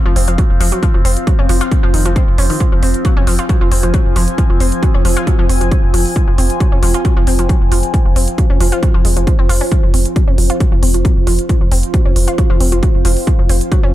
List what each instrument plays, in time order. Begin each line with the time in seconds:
Already playing: synth drone F3 C4, ambient pad F4 C5 F5
0.06 sub bass F1, synth arpeggio sound F3
0.16 sub bass F1, synth arpeggio sound C4, open hi-hat
0.28 sub bass F1, synth arpeggio sound F3, closed hi-hat
0.38 synth arpeggio sound F#3, kick, closed hi-hat
0.50 sub bass F1
0.61 sub bass F1, synth arpeggio sound F3, open hi-hat
0.72 synth arpeggio sound F#3, closed hi-hat
0.83 synth arpeggio sound F3, kick, closed hi-hat
0.94 sub bass F1, synth arpeggio sound F3
1.05 sub bass F1, synth arpeggio sound C4, open hi-hat
1.17 closed hi-hat
1.27 synth arpeggio sound F#3, kick, closed hi-hat
1.39 sub bass F1, synth arpeggio sound C#4
1.49 sub bass F1, synth arpeggio sound F3, open hi-hat
1.61 synth arpeggio sound F4, closed hi-hat
1.72 kick, closed hi-hat
1.83 sub bass F1, synth arpeggio sound F3
1.94 sub bass F1, synth arpeggio sound D#3, open hi-hat
2.05 sub bass F1, synth arpeggio sound F3, closed hi-hat
2.16 synth arpeggio sound C4, kick, closed hi-hat
2.28 sub bass F1
2.38 sub bass F1, synth arpeggio sound C#4, open hi-hat
2.50 synth arpeggio sound D#3, open hi-hat
2.60 synth arpeggio sound F3, kick, closed hi-hat
2.70 sub bass F1, synth arpeggio sound F3, ambient pad G#5
2.83 sub bass F1, synth arpeggio sound C4, open hi-hat
2.94 closed hi-hat
3.05 synth arpeggio sound F#3, kick, closed hi-hat
3.17 sub bass F1, synth arpeggio sound C#4
3.27 sub bass F1, synth arpeggio sound F3, open hi-hat
3.39 synth arpeggio sound F4, closed hi-hat
3.49 synth arpeggio sound F#3, kick, closed hi-hat
3.61 sub bass F1, synth arpeggio sound F3
3.72 sub bass F1, synth arpeggio sound C4, open hi-hat
3.83 sub bass F1, synth arpeggio sound F3, closed hi-hat
3.94 synth arpeggio sound F#3, kick, closed hi-hat
4.06 sub bass F1
4.16 sub bass F1, synth arpeggio sound F3, open hi-hat
4.28 closed hi-hat
4.38 synth arpeggio sound F3, kick, closed hi-hat
4.50 sub bass F1, synth arpeggio sound F3
4.60 sub bass F1, synth arpeggio sound C4, open hi-hat
4.72 closed hi-hat
4.83 synth arpeggio sound F#3, kick, closed hi-hat
4.94 sub bass F1, synth arpeggio sound C#4
5.05 sub bass F1, synth arpeggio sound F3, open hi-hat
5.17 synth arpeggio sound F4, closed hi-hat
5.27 synth arpeggio sound F#3, kick, closed hi-hat
5.39 sub bass F1, synth arpeggio sound F3
5.49 sub bass F1, synth arpeggio sound C4, open hi-hat
5.61 sub bass F1, synth arpeggio sound F3, closed hi-hat
5.72 synth arpeggio sound F#3, kick, closed hi-hat
5.83 sub bass F1
5.94 sub bass F1, synth arpeggio sound F3, open hi-hat
6.06 open hi-hat
6.16 synth arpeggio sound F3, kick, closed hi-hat
6.28 sub bass F1, synth arpeggio sound F3
6.38 sub bass F1, synth arpeggio sound C4, open hi-hat
6.50 closed hi-hat
6.60 synth arpeggio sound F#3, kick, closed hi-hat
6.72 sub bass F1, synth arpeggio sound C#4
6.83 sub bass F1, synth arpeggio sound F3, open hi-hat
6.94 synth arpeggio sound F4, closed hi-hat
7.05 synth arpeggio sound F#3, kick, closed hi-hat
7.17 sub bass F1, synth arpeggio sound F3
7.27 sub bass F1, synth arpeggio sound C4, open hi-hat
7.39 sub bass F1, synth arpeggio sound F3, closed hi-hat
7.49 synth arpeggio sound F#3, kick, closed hi-hat
7.61 sub bass F1
7.72 sub bass F1, synth arpeggio sound F3, open hi-hat
7.83 closed hi-hat
7.94 synth arpeggio sound F3, kick, closed hi-hat
8.05 sub bass F1, synth arpeggio sound F3
8.16 sub bass F1, synth arpeggio sound C4, open hi-hat
8.28 closed hi-hat
8.38 synth arpeggio sound F#3, kick, closed hi-hat
8.50 sub bass F1, synth arpeggio sound C#4
8.60 sub bass F1, synth arpeggio sound F3, open hi-hat
8.72 synth arpeggio sound F4, closed hi-hat
8.83 synth arpeggio sound F#3, kick, closed hi-hat
8.94 sub bass F1, synth arpeggio sound F3
9.05 sub bass F1, synth arpeggio sound G#3, open hi-hat
9.16 sub bass F1, synth arpeggio sound F3, closed hi-hat
9.27 synth arpeggio sound F3, kick, closed hi-hat
9.39 sub bass F1, synth arpeggio sound C4
9.49 sub bass F1, synth arpeggio sound F4, open hi-hat
9.61 synth arpeggio sound C#4, open hi-hat
9.71 synth arpeggio sound F3, synth drone F3 C4, kick, closed hi-hat
9.82 sub bass F1, synth arpeggio sound F3, ambient pad F5
9.94 sub bass F1, synth arpeggio sound C4, open hi-hat
10.05 closed hi-hat
10.16 synth arpeggio sound F#3, kick, closed hi-hat
10.28 sub bass F1, synth arpeggio sound C#4
10.38 sub bass F1, synth arpeggio sound F3, open hi-hat
10.50 synth arpeggio sound F4, closed hi-hat
10.60 synth arpeggio sound F#3, kick, closed hi-hat
10.72 sub bass F1, synth arpeggio sound F3
10.83 sub bass F1, synth arpeggio sound C4, open hi-hat
10.94 sub bass F1, synth arpeggio sound F3, closed hi-hat
11.05 synth arpeggio sound F#3, kick, closed hi-hat
11.17 sub bass F1
11.27 sub bass F1, synth arpeggio sound F3, open hi-hat
11.39 closed hi-hat
11.49 synth arpeggio sound F3, kick, closed hi-hat
11.61 sub bass F1, synth arpeggio sound F3
11.72 sub bass F1, synth arpeggio sound C4, open hi-hat
11.83 closed hi-hat
11.94 synth arpeggio sound F#3, kick, closed hi-hat
12.05 sub bass F1, synth arpeggio sound C#4
12.16 sub bass F1, synth arpeggio sound F3, open hi-hat
12.28 synth arpeggio sound F4, closed hi-hat
12.38 synth arpeggio sound F#3, kick, closed hi-hat
12.50 sub bass F1, synth arpeggio sound F3
12.60 sub bass F1, synth arpeggio sound C4, open hi-hat
12.72 sub bass F1, synth arpeggio sound F3, closed hi-hat
12.83 synth arpeggio sound F#3, kick, closed hi-hat
12.95 sub bass F1
13.05 sub bass F1, synth arpeggio sound F3, open hi-hat
13.17 open hi-hat
13.27 synth arpeggio sound F3, kick, closed hi-hat
13.39 sub bass F1, synth arpeggio sound F3
13.49 sub bass F1, synth arpeggio sound C4, open hi-hat
13.61 closed hi-hat
13.72 synth arpeggio sound F#3, kick, closed hi-hat
13.83 sub bass F1, synth arpeggio sound C#4